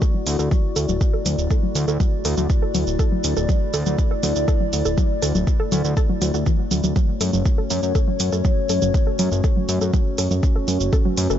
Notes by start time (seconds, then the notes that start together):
Already playing: A3 E4 F#4 D5
0.02 A4, kick, shaker
0.14 F#3
0.27 D2, open hi-hat, shaker
0.39 D2 A4, shaker
0.51 F#3, kick, shaker
0.76 D2 A4, open hi-hat, shaker
0.89 D1 F#3, shaker
1.01 kick, shaker
1.14 A4
1.26 D2 F#3, open hi-hat, shaker
1.38 D1, shaker
1.51 A4, kick, shaker
1.63 F#3
1.75 D2, open hi-hat, shaker
1.88 D2 A4, shaker
2.00 F#3, kick, shaker
2.25 D2 A4, open hi-hat, shaker
2.37 D2 F#3, shaker
2.50 kick, shaker
2.62 A4
2.75 D2 F#3, open hi-hat, shaker
2.87 D1, shaker
2.99 A4, kick, shaker
3.12 F#3
3.24 D2, open hi-hat, shaker
3.37 D1 A4, shaker
3.49 F#3, kick, shaker
3.74 D2 A4, open hi-hat, shaker
3.86 D2 F#3, shaker
3.98 kick, shaker
4.11 A4
4.23 D2 F#3, open hi-hat, shaker
4.36 D2, shaker
4.48 A4, kick, shaker
4.61 F#3
4.73 D2, open hi-hat, shaker
4.85 D1 A4, shaker
4.98 F#3, kick, shaker
5.22 D2 A4, open hi-hat, shaker
5.35 D1 F#3, shaker
5.47 kick, shaker
5.60 A4
5.72 D2 F#3, open hi-hat, shaker
5.85 D2, shaker
5.97 A4, kick, shaker
6.09 F#3
6.22 D2 F#3, open hi-hat, shaker
6.34 D2 F#4, shaker
6.46 E3, kick, shaker
6.71 D2 F#3, open hi-hat, shaker
6.84 D2 F#3, shaker
6.96 F#3 C#4 F#4 C#5, kick, shaker
7.21 F#2 A4, open hi-hat, shaker
7.33 F#1 F#3, shaker
7.46 kick, shaker
7.58 A4
7.70 F#2 F#3, open hi-hat, shaker
7.83 F#2, shaker
7.95 A4, kick, shaker
8.08 F#3
8.20 F#2, open hi-hat, shaker
8.32 F#2 A4, shaker
8.45 F#3, kick, shaker
8.69 F#2 A4, open hi-hat, shaker
8.82 F#1 F#3, shaker
8.94 kick, shaker
9.07 A4
9.19 F#2 F#3, open hi-hat, shaker
9.32 F#1, shaker
9.44 A4, kick, shaker
9.57 F#3
9.69 F#2, open hi-hat, shaker
9.81 F#2 A4, shaker
9.93 F#3, kick, shaker
10.18 F#2 A4, open hi-hat, shaker
10.31 F#2 F#3, shaker
10.43 kick, shaker
10.56 A4
10.68 F#2 F#3, open hi-hat, shaker
10.81 F#1, shaker
10.93 A4 B4, kick, shaker
11.05 F#3
11.17 F#2, open hi-hat, shaker
11.30 F#1 A4, shaker